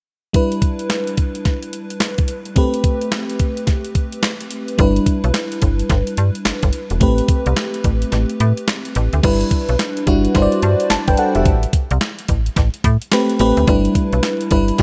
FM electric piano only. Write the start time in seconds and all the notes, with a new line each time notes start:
0.33 G3 D4 E4 B4
2.56 A3 C4 G4 B4
4.78 G3 D4 E4 B4
7.00 A3 C4 G4 B4
9.23 G3 D4 E4 B4
10.07 G3 D4 E4 F#4
10.34 G3 D4 E4 C5
10.42 D5
10.90 A5
11.08 B4 G5
11.18 A4 F#5
11.35 G4 E5
13.12 A3 C4 G4 B4
13.40 A3 C4 G4 B4
13.68 G3 D4 E4 B4
14.51 G3 D4 E4 B4
14.79 G3 D4 E4